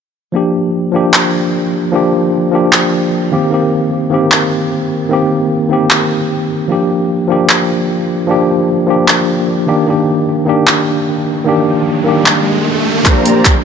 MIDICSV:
0, 0, Header, 1, 5, 480
1, 0, Start_track
1, 0, Key_signature, -2, "major"
1, 0, Tempo, 397351
1, 414, Time_signature, 4, 2, 24, 8
1, 16477, End_track
2, 0, Start_track
2, 0, Title_t, "Analog polysynth"
2, 0, Program_c, 0, 90
2, 15771, Note_on_c, 0, 67, 75
2, 15771, Note_on_c, 0, 72, 79
2, 15771, Note_on_c, 0, 82, 92
2, 15772, Note_on_c, 0, 58, 83
2, 15772, Note_on_c, 0, 74, 78
2, 16113, Note_off_c, 0, 58, 0
2, 16113, Note_off_c, 0, 67, 0
2, 16113, Note_off_c, 0, 72, 0
2, 16113, Note_off_c, 0, 74, 0
2, 16113, Note_off_c, 0, 82, 0
2, 16141, Note_on_c, 0, 82, 87
2, 16142, Note_on_c, 0, 58, 79
2, 16142, Note_on_c, 0, 67, 75
2, 16142, Note_on_c, 0, 74, 74
2, 16143, Note_on_c, 0, 72, 72
2, 16340, Note_off_c, 0, 58, 0
2, 16340, Note_off_c, 0, 67, 0
2, 16340, Note_off_c, 0, 72, 0
2, 16340, Note_off_c, 0, 74, 0
2, 16340, Note_off_c, 0, 82, 0
2, 16477, End_track
3, 0, Start_track
3, 0, Title_t, "Tine electric piano"
3, 0, Program_c, 1, 4
3, 390, Note_on_c, 1, 53, 79
3, 407, Note_on_c, 1, 58, 75
3, 424, Note_on_c, 1, 62, 73
3, 438, Note_on_c, 1, 67, 87
3, 643, Control_c, 1, 64, 127
3, 1096, Note_off_c, 1, 53, 0
3, 1105, Note_off_c, 1, 58, 0
3, 1110, Note_on_c, 1, 53, 93
3, 1113, Note_off_c, 1, 62, 0
3, 1121, Note_off_c, 1, 67, 0
3, 1128, Note_on_c, 1, 58, 81
3, 1144, Note_on_c, 1, 62, 84
3, 1158, Note_on_c, 1, 67, 97
3, 2296, Note_off_c, 1, 53, 0
3, 2305, Note_off_c, 1, 58, 0
3, 2312, Note_on_c, 1, 53, 96
3, 2313, Note_off_c, 1, 62, 0
3, 2320, Note_off_c, 1, 67, 0
3, 2328, Note_on_c, 1, 58, 86
3, 2344, Note_on_c, 1, 62, 87
3, 2360, Note_on_c, 1, 67, 103
3, 3017, Note_off_c, 1, 53, 0
3, 3025, Note_off_c, 1, 58, 0
3, 3032, Note_on_c, 1, 53, 88
3, 3033, Note_off_c, 1, 62, 0
3, 3042, Note_off_c, 1, 67, 0
3, 3048, Note_on_c, 1, 58, 79
3, 3063, Note_on_c, 1, 62, 81
3, 3079, Note_on_c, 1, 67, 98
3, 3978, Note_off_c, 1, 53, 0
3, 3985, Note_off_c, 1, 58, 0
3, 3993, Note_off_c, 1, 62, 0
3, 4001, Note_off_c, 1, 67, 0
3, 4002, Note_on_c, 1, 51, 89
3, 4010, Note_on_c, 1, 58, 82
3, 4018, Note_on_c, 1, 60, 83
3, 4027, Note_on_c, 1, 67, 97
3, 4032, Control_c, 1, 64, 0
3, 4215, Note_off_c, 1, 51, 0
3, 4226, Note_off_c, 1, 58, 0
3, 4230, Note_off_c, 1, 60, 0
3, 4230, Note_on_c, 1, 51, 78
3, 4235, Note_off_c, 1, 67, 0
3, 4246, Note_on_c, 1, 58, 74
3, 4261, Note_on_c, 1, 60, 75
3, 4271, Control_c, 1, 64, 127
3, 4277, Note_on_c, 1, 67, 90
3, 4936, Note_off_c, 1, 51, 0
3, 4944, Note_off_c, 1, 58, 0
3, 4950, Note_on_c, 1, 51, 96
3, 4952, Note_off_c, 1, 60, 0
3, 4960, Note_off_c, 1, 67, 0
3, 4965, Note_on_c, 1, 58, 85
3, 4983, Note_on_c, 1, 60, 87
3, 4999, Note_on_c, 1, 67, 103
3, 6136, Note_off_c, 1, 51, 0
3, 6144, Note_off_c, 1, 58, 0
3, 6150, Note_on_c, 1, 51, 96
3, 6153, Note_off_c, 1, 60, 0
3, 6161, Note_off_c, 1, 67, 0
3, 6166, Note_on_c, 1, 58, 88
3, 6183, Note_on_c, 1, 60, 90
3, 6199, Note_on_c, 1, 67, 104
3, 6856, Note_off_c, 1, 51, 0
3, 6864, Note_off_c, 1, 58, 0
3, 6871, Note_on_c, 1, 51, 87
3, 6873, Note_off_c, 1, 60, 0
3, 6881, Note_off_c, 1, 67, 0
3, 6887, Note_on_c, 1, 58, 80
3, 6903, Note_on_c, 1, 60, 79
3, 6919, Note_on_c, 1, 67, 99
3, 7817, Note_off_c, 1, 51, 0
3, 7825, Note_off_c, 1, 58, 0
3, 7833, Note_off_c, 1, 60, 0
3, 7841, Note_off_c, 1, 67, 0
3, 8069, Note_on_c, 1, 53, 81
3, 8083, Note_on_c, 1, 58, 74
3, 8100, Note_on_c, 1, 62, 72
3, 8108, Control_c, 1, 64, 0
3, 8118, Note_on_c, 1, 67, 92
3, 8292, Control_c, 1, 64, 127
3, 8776, Note_off_c, 1, 53, 0
3, 8783, Note_off_c, 1, 58, 0
3, 8789, Note_on_c, 1, 53, 92
3, 8791, Note_off_c, 1, 62, 0
3, 8800, Note_off_c, 1, 67, 0
3, 8805, Note_on_c, 1, 58, 82
3, 8822, Note_on_c, 1, 62, 83
3, 8838, Note_on_c, 1, 67, 103
3, 9973, Note_off_c, 1, 53, 0
3, 9984, Note_off_c, 1, 58, 0
3, 9987, Note_on_c, 1, 53, 95
3, 9992, Note_off_c, 1, 62, 0
3, 10000, Note_off_c, 1, 67, 0
3, 10003, Note_on_c, 1, 58, 84
3, 10019, Note_on_c, 1, 62, 91
3, 10036, Note_on_c, 1, 67, 104
3, 10692, Note_off_c, 1, 53, 0
3, 10703, Note_off_c, 1, 58, 0
3, 10707, Note_on_c, 1, 53, 89
3, 10711, Note_off_c, 1, 62, 0
3, 10719, Note_off_c, 1, 67, 0
3, 10723, Note_on_c, 1, 58, 81
3, 10739, Note_on_c, 1, 62, 79
3, 10755, Note_on_c, 1, 67, 99
3, 11655, Note_off_c, 1, 53, 0
3, 11663, Note_off_c, 1, 58, 0
3, 11671, Note_off_c, 1, 62, 0
3, 11679, Note_off_c, 1, 67, 0
3, 11681, Note_on_c, 1, 51, 94
3, 11689, Note_on_c, 1, 58, 87
3, 11698, Note_on_c, 1, 62, 83
3, 11705, Note_on_c, 1, 67, 101
3, 11710, Control_c, 1, 64, 0
3, 11896, Note_off_c, 1, 51, 0
3, 11906, Note_off_c, 1, 58, 0
3, 11910, Note_off_c, 1, 62, 0
3, 11911, Note_on_c, 1, 51, 83
3, 11914, Note_off_c, 1, 67, 0
3, 11927, Note_on_c, 1, 58, 74
3, 11942, Note_on_c, 1, 62, 75
3, 11950, Control_c, 1, 64, 127
3, 11960, Note_on_c, 1, 67, 89
3, 12614, Note_off_c, 1, 51, 0
3, 12625, Note_off_c, 1, 58, 0
3, 12628, Note_on_c, 1, 51, 92
3, 12633, Note_off_c, 1, 62, 0
3, 12641, Note_off_c, 1, 67, 0
3, 12644, Note_on_c, 1, 58, 87
3, 12660, Note_on_c, 1, 62, 88
3, 12676, Note_on_c, 1, 67, 104
3, 13811, Note_off_c, 1, 51, 0
3, 13823, Note_off_c, 1, 58, 0
3, 13826, Note_on_c, 1, 51, 97
3, 13831, Note_off_c, 1, 62, 0
3, 13839, Note_off_c, 1, 67, 0
3, 13843, Note_on_c, 1, 58, 90
3, 13859, Note_on_c, 1, 62, 88
3, 13875, Note_on_c, 1, 67, 109
3, 14534, Note_off_c, 1, 51, 0
3, 14543, Note_off_c, 1, 58, 0
3, 14550, Note_on_c, 1, 51, 90
3, 14551, Note_off_c, 1, 62, 0
3, 14559, Note_off_c, 1, 67, 0
3, 14565, Note_on_c, 1, 58, 82
3, 14581, Note_on_c, 1, 62, 80
3, 14598, Note_on_c, 1, 67, 99
3, 15496, Note_off_c, 1, 51, 0
3, 15504, Note_off_c, 1, 58, 0
3, 15512, Note_off_c, 1, 62, 0
3, 15521, Note_off_c, 1, 67, 0
3, 15746, Note_on_c, 1, 53, 85
3, 15762, Note_on_c, 1, 58, 75
3, 15779, Note_on_c, 1, 62, 74
3, 15792, Control_c, 1, 64, 0
3, 15794, Note_on_c, 1, 67, 91
3, 15975, Control_c, 1, 64, 127
3, 16454, Note_off_c, 1, 53, 0
3, 16462, Note_off_c, 1, 58, 0
3, 16471, Note_off_c, 1, 62, 0
3, 16477, Note_off_c, 1, 67, 0
3, 16477, End_track
4, 0, Start_track
4, 0, Title_t, "Riser"
4, 0, Program_c, 2, 103
4, 11933, Note_on_c, 2, 60, 73
4, 15771, Note_off_c, 2, 60, 0
4, 15771, Note_on_c, 2, 60, 78
4, 16477, Note_off_c, 2, 60, 0
4, 16477, End_track
5, 0, Start_track
5, 0, Title_t, "Drums"
5, 1373, Note_on_c, 9, 39, 96
5, 1494, Note_off_c, 9, 39, 0
5, 3294, Note_on_c, 9, 39, 98
5, 3415, Note_off_c, 9, 39, 0
5, 5215, Note_on_c, 9, 39, 92
5, 5335, Note_off_c, 9, 39, 0
5, 7134, Note_on_c, 9, 39, 89
5, 7255, Note_off_c, 9, 39, 0
5, 9053, Note_on_c, 9, 39, 86
5, 9174, Note_off_c, 9, 39, 0
5, 10972, Note_on_c, 9, 39, 89
5, 11093, Note_off_c, 9, 39, 0
5, 12894, Note_on_c, 9, 39, 91
5, 13015, Note_off_c, 9, 39, 0
5, 14813, Note_on_c, 9, 39, 93
5, 14934, Note_off_c, 9, 39, 0
5, 15771, Note_on_c, 9, 36, 95
5, 15772, Note_on_c, 9, 39, 50
5, 15772, Note_on_c, 9, 42, 82
5, 15892, Note_off_c, 9, 36, 0
5, 15893, Note_off_c, 9, 39, 0
5, 15893, Note_off_c, 9, 42, 0
5, 16012, Note_on_c, 9, 42, 66
5, 16133, Note_off_c, 9, 42, 0
5, 16251, Note_on_c, 9, 36, 89
5, 16251, Note_on_c, 9, 39, 51
5, 16251, Note_on_c, 9, 42, 81
5, 16371, Note_off_c, 9, 39, 0
5, 16371, Note_off_c, 9, 42, 0
5, 16372, Note_off_c, 9, 36, 0
5, 16477, End_track
0, 0, End_of_file